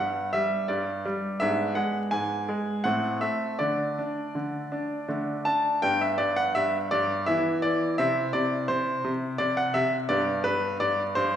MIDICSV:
0, 0, Header, 1, 2, 480
1, 0, Start_track
1, 0, Key_signature, 1, "major"
1, 0, Tempo, 716846
1, 941, Time_signature, 3, 2, 24, 8
1, 1908, Tempo, 744417
1, 3828, Tempo, 710900
1, 7566, End_track
2, 0, Start_track
2, 0, Title_t, "Grand piano"
2, 0, Program_c, 0, 0
2, 0, Note_on_c, 0, 43, 52
2, 0, Note_on_c, 0, 59, 43
2, 0, Note_on_c, 0, 62, 41
2, 0, Note_on_c, 0, 78, 72
2, 198, Note_off_c, 0, 78, 0
2, 219, Note_off_c, 0, 43, 0
2, 219, Note_on_c, 0, 76, 84
2, 229, Note_on_c, 0, 55, 58
2, 457, Note_on_c, 0, 74, 68
2, 458, Note_off_c, 0, 55, 0
2, 461, Note_off_c, 0, 76, 0
2, 464, Note_on_c, 0, 43, 52
2, 695, Note_off_c, 0, 43, 0
2, 699, Note_off_c, 0, 74, 0
2, 706, Note_on_c, 0, 55, 61
2, 915, Note_off_c, 0, 59, 0
2, 915, Note_off_c, 0, 62, 0
2, 936, Note_off_c, 0, 55, 0
2, 936, Note_on_c, 0, 76, 85
2, 944, Note_on_c, 0, 59, 43
2, 945, Note_on_c, 0, 62, 43
2, 946, Note_on_c, 0, 44, 62
2, 1153, Note_off_c, 0, 76, 0
2, 1173, Note_on_c, 0, 78, 73
2, 1175, Note_off_c, 0, 44, 0
2, 1180, Note_on_c, 0, 56, 52
2, 1318, Note_off_c, 0, 78, 0
2, 1411, Note_off_c, 0, 56, 0
2, 1413, Note_on_c, 0, 80, 82
2, 1421, Note_on_c, 0, 44, 50
2, 1654, Note_off_c, 0, 44, 0
2, 1664, Note_on_c, 0, 56, 59
2, 1881, Note_off_c, 0, 59, 0
2, 1882, Note_off_c, 0, 62, 0
2, 1901, Note_off_c, 0, 56, 0
2, 1901, Note_on_c, 0, 78, 77
2, 1904, Note_off_c, 0, 80, 0
2, 1909, Note_on_c, 0, 45, 56
2, 1909, Note_on_c, 0, 60, 39
2, 1910, Note_on_c, 0, 57, 39
2, 2118, Note_off_c, 0, 78, 0
2, 2137, Note_off_c, 0, 57, 0
2, 2139, Note_off_c, 0, 45, 0
2, 2140, Note_on_c, 0, 76, 75
2, 2147, Note_on_c, 0, 57, 49
2, 2363, Note_off_c, 0, 60, 0
2, 2381, Note_off_c, 0, 57, 0
2, 2384, Note_on_c, 0, 74, 73
2, 2385, Note_off_c, 0, 76, 0
2, 2391, Note_on_c, 0, 57, 37
2, 2391, Note_on_c, 0, 62, 39
2, 2394, Note_on_c, 0, 50, 56
2, 2629, Note_off_c, 0, 50, 0
2, 2631, Note_off_c, 0, 62, 0
2, 2641, Note_on_c, 0, 62, 42
2, 2873, Note_off_c, 0, 62, 0
2, 2875, Note_on_c, 0, 50, 46
2, 3107, Note_off_c, 0, 50, 0
2, 3113, Note_on_c, 0, 62, 50
2, 3328, Note_off_c, 0, 57, 0
2, 3340, Note_off_c, 0, 62, 0
2, 3349, Note_on_c, 0, 50, 53
2, 3350, Note_on_c, 0, 57, 36
2, 3350, Note_on_c, 0, 62, 39
2, 3583, Note_off_c, 0, 50, 0
2, 3585, Note_off_c, 0, 62, 0
2, 3585, Note_on_c, 0, 81, 74
2, 3590, Note_off_c, 0, 74, 0
2, 3594, Note_on_c, 0, 62, 52
2, 3801, Note_off_c, 0, 57, 0
2, 3801, Note_off_c, 0, 81, 0
2, 3822, Note_off_c, 0, 62, 0
2, 3825, Note_on_c, 0, 79, 89
2, 3830, Note_on_c, 0, 43, 62
2, 3831, Note_on_c, 0, 62, 40
2, 3832, Note_on_c, 0, 59, 41
2, 3948, Note_off_c, 0, 79, 0
2, 3952, Note_on_c, 0, 76, 70
2, 4060, Note_off_c, 0, 43, 0
2, 4065, Note_on_c, 0, 74, 82
2, 4070, Note_on_c, 0, 43, 51
2, 4072, Note_off_c, 0, 76, 0
2, 4189, Note_off_c, 0, 74, 0
2, 4191, Note_on_c, 0, 78, 86
2, 4305, Note_off_c, 0, 43, 0
2, 4312, Note_off_c, 0, 78, 0
2, 4315, Note_on_c, 0, 76, 86
2, 4323, Note_on_c, 0, 43, 57
2, 4460, Note_off_c, 0, 76, 0
2, 4554, Note_off_c, 0, 43, 0
2, 4560, Note_on_c, 0, 74, 93
2, 4567, Note_on_c, 0, 43, 63
2, 4773, Note_off_c, 0, 62, 0
2, 4774, Note_off_c, 0, 59, 0
2, 4797, Note_off_c, 0, 43, 0
2, 4798, Note_on_c, 0, 76, 79
2, 4801, Note_off_c, 0, 74, 0
2, 4805, Note_on_c, 0, 52, 62
2, 4805, Note_on_c, 0, 64, 44
2, 4808, Note_on_c, 0, 59, 47
2, 5015, Note_off_c, 0, 76, 0
2, 5036, Note_off_c, 0, 52, 0
2, 5041, Note_on_c, 0, 74, 82
2, 5047, Note_on_c, 0, 52, 55
2, 5256, Note_off_c, 0, 64, 0
2, 5256, Note_off_c, 0, 74, 0
2, 5257, Note_off_c, 0, 59, 0
2, 5276, Note_off_c, 0, 52, 0
2, 5282, Note_on_c, 0, 76, 86
2, 5286, Note_on_c, 0, 64, 46
2, 5289, Note_on_c, 0, 60, 47
2, 5290, Note_on_c, 0, 48, 62
2, 5496, Note_off_c, 0, 76, 0
2, 5517, Note_off_c, 0, 48, 0
2, 5518, Note_on_c, 0, 74, 83
2, 5527, Note_on_c, 0, 48, 55
2, 5733, Note_off_c, 0, 74, 0
2, 5753, Note_off_c, 0, 48, 0
2, 5755, Note_on_c, 0, 72, 84
2, 5763, Note_on_c, 0, 48, 56
2, 5990, Note_off_c, 0, 48, 0
2, 6001, Note_on_c, 0, 48, 63
2, 6043, Note_off_c, 0, 72, 0
2, 6227, Note_off_c, 0, 48, 0
2, 6229, Note_on_c, 0, 74, 90
2, 6237, Note_on_c, 0, 48, 60
2, 6353, Note_off_c, 0, 74, 0
2, 6355, Note_on_c, 0, 78, 80
2, 6468, Note_off_c, 0, 48, 0
2, 6470, Note_on_c, 0, 76, 90
2, 6475, Note_off_c, 0, 78, 0
2, 6478, Note_on_c, 0, 48, 61
2, 6613, Note_off_c, 0, 76, 0
2, 6689, Note_off_c, 0, 64, 0
2, 6690, Note_off_c, 0, 60, 0
2, 6705, Note_on_c, 0, 74, 84
2, 6706, Note_off_c, 0, 48, 0
2, 6710, Note_on_c, 0, 59, 48
2, 6711, Note_on_c, 0, 43, 69
2, 6712, Note_on_c, 0, 62, 44
2, 6940, Note_off_c, 0, 43, 0
2, 6942, Note_on_c, 0, 71, 89
2, 6944, Note_off_c, 0, 74, 0
2, 6951, Note_on_c, 0, 43, 54
2, 7160, Note_off_c, 0, 71, 0
2, 7181, Note_off_c, 0, 43, 0
2, 7186, Note_on_c, 0, 74, 86
2, 7191, Note_on_c, 0, 43, 62
2, 7332, Note_off_c, 0, 74, 0
2, 7421, Note_off_c, 0, 43, 0
2, 7424, Note_on_c, 0, 72, 90
2, 7432, Note_on_c, 0, 43, 68
2, 7566, Note_off_c, 0, 43, 0
2, 7566, Note_off_c, 0, 59, 0
2, 7566, Note_off_c, 0, 62, 0
2, 7566, Note_off_c, 0, 72, 0
2, 7566, End_track
0, 0, End_of_file